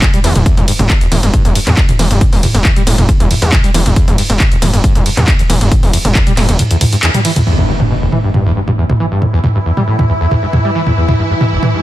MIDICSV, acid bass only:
0, 0, Header, 1, 2, 480
1, 0, Start_track
1, 0, Key_signature, 1, "minor"
1, 0, Tempo, 437956
1, 504, Time_signature, 4, 2, 24, 8
1, 12957, End_track
2, 0, Start_track
2, 0, Title_t, "Acid bass"
2, 0, Program_c, 0, 38
2, 24, Note_on_c, 0, 40, 84
2, 93, Note_off_c, 0, 40, 0
2, 149, Note_on_c, 0, 55, 82
2, 212, Note_off_c, 0, 55, 0
2, 264, Note_on_c, 0, 52, 103
2, 333, Note_off_c, 0, 52, 0
2, 390, Note_on_c, 0, 40, 78
2, 452, Note_off_c, 0, 40, 0
2, 504, Note_on_c, 0, 40, 83
2, 608, Note_off_c, 0, 40, 0
2, 630, Note_on_c, 0, 40, 102
2, 692, Note_off_c, 0, 40, 0
2, 745, Note_on_c, 0, 43, 80
2, 786, Note_off_c, 0, 43, 0
2, 870, Note_on_c, 0, 43, 82
2, 908, Note_off_c, 0, 43, 0
2, 984, Note_on_c, 0, 47, 83
2, 1026, Note_off_c, 0, 47, 0
2, 1110, Note_on_c, 0, 28, 103
2, 1173, Note_off_c, 0, 28, 0
2, 1224, Note_on_c, 0, 52, 81
2, 1293, Note_off_c, 0, 52, 0
2, 1350, Note_on_c, 0, 43, 79
2, 1412, Note_off_c, 0, 43, 0
2, 1464, Note_on_c, 0, 43, 85
2, 1567, Note_off_c, 0, 43, 0
2, 1589, Note_on_c, 0, 40, 105
2, 1652, Note_off_c, 0, 40, 0
2, 1703, Note_on_c, 0, 43, 76
2, 1745, Note_off_c, 0, 43, 0
2, 1829, Note_on_c, 0, 43, 79
2, 1867, Note_off_c, 0, 43, 0
2, 1944, Note_on_c, 0, 40, 85
2, 2013, Note_off_c, 0, 40, 0
2, 2070, Note_on_c, 0, 38, 77
2, 2107, Note_off_c, 0, 38, 0
2, 2184, Note_on_c, 0, 52, 78
2, 2253, Note_off_c, 0, 52, 0
2, 2309, Note_on_c, 0, 43, 80
2, 2424, Note_on_c, 0, 40, 85
2, 2440, Note_off_c, 0, 43, 0
2, 2465, Note_off_c, 0, 40, 0
2, 2550, Note_on_c, 0, 40, 102
2, 2612, Note_off_c, 0, 40, 0
2, 2664, Note_on_c, 0, 40, 107
2, 2705, Note_off_c, 0, 40, 0
2, 2790, Note_on_c, 0, 43, 79
2, 2827, Note_off_c, 0, 43, 0
2, 2904, Note_on_c, 0, 40, 85
2, 2973, Note_off_c, 0, 40, 0
2, 3030, Note_on_c, 0, 55, 80
2, 3093, Note_off_c, 0, 55, 0
2, 3144, Note_on_c, 0, 45, 78
2, 3248, Note_off_c, 0, 45, 0
2, 3269, Note_on_c, 0, 40, 79
2, 3332, Note_off_c, 0, 40, 0
2, 3384, Note_on_c, 0, 40, 85
2, 3425, Note_off_c, 0, 40, 0
2, 3509, Note_on_c, 0, 40, 105
2, 3572, Note_off_c, 0, 40, 0
2, 3624, Note_on_c, 0, 40, 105
2, 3665, Note_off_c, 0, 40, 0
2, 3750, Note_on_c, 0, 43, 80
2, 3787, Note_off_c, 0, 43, 0
2, 3865, Note_on_c, 0, 40, 85
2, 3933, Note_off_c, 0, 40, 0
2, 3990, Note_on_c, 0, 55, 79
2, 4052, Note_off_c, 0, 55, 0
2, 4104, Note_on_c, 0, 52, 104
2, 4173, Note_off_c, 0, 52, 0
2, 4230, Note_on_c, 0, 40, 81
2, 4293, Note_off_c, 0, 40, 0
2, 4344, Note_on_c, 0, 40, 86
2, 4447, Note_off_c, 0, 40, 0
2, 4470, Note_on_c, 0, 40, 103
2, 4533, Note_off_c, 0, 40, 0
2, 4585, Note_on_c, 0, 43, 79
2, 4626, Note_off_c, 0, 43, 0
2, 4711, Note_on_c, 0, 43, 81
2, 4748, Note_off_c, 0, 43, 0
2, 4825, Note_on_c, 0, 47, 88
2, 4866, Note_off_c, 0, 47, 0
2, 4950, Note_on_c, 0, 28, 101
2, 5013, Note_off_c, 0, 28, 0
2, 5064, Note_on_c, 0, 52, 78
2, 5133, Note_off_c, 0, 52, 0
2, 5190, Note_on_c, 0, 43, 77
2, 5253, Note_off_c, 0, 43, 0
2, 5304, Note_on_c, 0, 43, 86
2, 5408, Note_off_c, 0, 43, 0
2, 5430, Note_on_c, 0, 40, 104
2, 5492, Note_off_c, 0, 40, 0
2, 5544, Note_on_c, 0, 43, 79
2, 5585, Note_off_c, 0, 43, 0
2, 5670, Note_on_c, 0, 43, 77
2, 5707, Note_off_c, 0, 43, 0
2, 5784, Note_on_c, 0, 40, 88
2, 5853, Note_off_c, 0, 40, 0
2, 5909, Note_on_c, 0, 38, 81
2, 5947, Note_off_c, 0, 38, 0
2, 6024, Note_on_c, 0, 52, 81
2, 6093, Note_off_c, 0, 52, 0
2, 6150, Note_on_c, 0, 43, 78
2, 6264, Note_on_c, 0, 40, 86
2, 6280, Note_off_c, 0, 43, 0
2, 6305, Note_off_c, 0, 40, 0
2, 6390, Note_on_c, 0, 40, 101
2, 6452, Note_off_c, 0, 40, 0
2, 6504, Note_on_c, 0, 40, 103
2, 6545, Note_off_c, 0, 40, 0
2, 6629, Note_on_c, 0, 43, 80
2, 6667, Note_off_c, 0, 43, 0
2, 6744, Note_on_c, 0, 40, 86
2, 6813, Note_off_c, 0, 40, 0
2, 6870, Note_on_c, 0, 55, 76
2, 6933, Note_off_c, 0, 55, 0
2, 6984, Note_on_c, 0, 45, 80
2, 7087, Note_off_c, 0, 45, 0
2, 7110, Note_on_c, 0, 40, 80
2, 7172, Note_off_c, 0, 40, 0
2, 7224, Note_on_c, 0, 40, 83
2, 7265, Note_off_c, 0, 40, 0
2, 7350, Note_on_c, 0, 40, 103
2, 7413, Note_off_c, 0, 40, 0
2, 7464, Note_on_c, 0, 40, 103
2, 7505, Note_off_c, 0, 40, 0
2, 7590, Note_on_c, 0, 43, 80
2, 7627, Note_off_c, 0, 43, 0
2, 7704, Note_on_c, 0, 40, 84
2, 7773, Note_off_c, 0, 40, 0
2, 7830, Note_on_c, 0, 55, 81
2, 7893, Note_off_c, 0, 55, 0
2, 7945, Note_on_c, 0, 52, 106
2, 8013, Note_off_c, 0, 52, 0
2, 8070, Note_on_c, 0, 40, 81
2, 8132, Note_off_c, 0, 40, 0
2, 8184, Note_on_c, 0, 40, 82
2, 8288, Note_off_c, 0, 40, 0
2, 8310, Note_on_c, 0, 40, 97
2, 8373, Note_off_c, 0, 40, 0
2, 8424, Note_on_c, 0, 43, 76
2, 8465, Note_off_c, 0, 43, 0
2, 8550, Note_on_c, 0, 43, 76
2, 8587, Note_off_c, 0, 43, 0
2, 8664, Note_on_c, 0, 47, 78
2, 8705, Note_off_c, 0, 47, 0
2, 8790, Note_on_c, 0, 28, 97
2, 8853, Note_off_c, 0, 28, 0
2, 8904, Note_on_c, 0, 52, 74
2, 8973, Note_off_c, 0, 52, 0
2, 9029, Note_on_c, 0, 43, 76
2, 9092, Note_off_c, 0, 43, 0
2, 9143, Note_on_c, 0, 43, 83
2, 9247, Note_off_c, 0, 43, 0
2, 9270, Note_on_c, 0, 40, 103
2, 9332, Note_off_c, 0, 40, 0
2, 9384, Note_on_c, 0, 43, 74
2, 9425, Note_off_c, 0, 43, 0
2, 9509, Note_on_c, 0, 43, 77
2, 9547, Note_off_c, 0, 43, 0
2, 9623, Note_on_c, 0, 40, 81
2, 9693, Note_off_c, 0, 40, 0
2, 9749, Note_on_c, 0, 38, 79
2, 9787, Note_off_c, 0, 38, 0
2, 9864, Note_on_c, 0, 52, 75
2, 9933, Note_off_c, 0, 52, 0
2, 9989, Note_on_c, 0, 43, 76
2, 10104, Note_on_c, 0, 40, 82
2, 10120, Note_off_c, 0, 43, 0
2, 10145, Note_off_c, 0, 40, 0
2, 10229, Note_on_c, 0, 40, 97
2, 10292, Note_off_c, 0, 40, 0
2, 10344, Note_on_c, 0, 40, 106
2, 10385, Note_off_c, 0, 40, 0
2, 10469, Note_on_c, 0, 43, 77
2, 10507, Note_off_c, 0, 43, 0
2, 10584, Note_on_c, 0, 40, 80
2, 10653, Note_off_c, 0, 40, 0
2, 10709, Note_on_c, 0, 55, 74
2, 10772, Note_off_c, 0, 55, 0
2, 10824, Note_on_c, 0, 45, 79
2, 10927, Note_off_c, 0, 45, 0
2, 10949, Note_on_c, 0, 40, 74
2, 11012, Note_off_c, 0, 40, 0
2, 11064, Note_on_c, 0, 40, 82
2, 11105, Note_off_c, 0, 40, 0
2, 11189, Note_on_c, 0, 40, 103
2, 11252, Note_off_c, 0, 40, 0
2, 11304, Note_on_c, 0, 40, 99
2, 11345, Note_off_c, 0, 40, 0
2, 11429, Note_on_c, 0, 43, 77
2, 11467, Note_off_c, 0, 43, 0
2, 11544, Note_on_c, 0, 40, 84
2, 11613, Note_off_c, 0, 40, 0
2, 11670, Note_on_c, 0, 55, 80
2, 11732, Note_off_c, 0, 55, 0
2, 11784, Note_on_c, 0, 52, 98
2, 11853, Note_off_c, 0, 52, 0
2, 11910, Note_on_c, 0, 40, 76
2, 11973, Note_off_c, 0, 40, 0
2, 12025, Note_on_c, 0, 40, 81
2, 12128, Note_off_c, 0, 40, 0
2, 12150, Note_on_c, 0, 40, 97
2, 12213, Note_off_c, 0, 40, 0
2, 12265, Note_on_c, 0, 43, 79
2, 12306, Note_off_c, 0, 43, 0
2, 12390, Note_on_c, 0, 43, 77
2, 12428, Note_off_c, 0, 43, 0
2, 12504, Note_on_c, 0, 47, 80
2, 12545, Note_off_c, 0, 47, 0
2, 12630, Note_on_c, 0, 28, 98
2, 12693, Note_off_c, 0, 28, 0
2, 12744, Note_on_c, 0, 52, 77
2, 12813, Note_off_c, 0, 52, 0
2, 12870, Note_on_c, 0, 43, 77
2, 12932, Note_off_c, 0, 43, 0
2, 12957, End_track
0, 0, End_of_file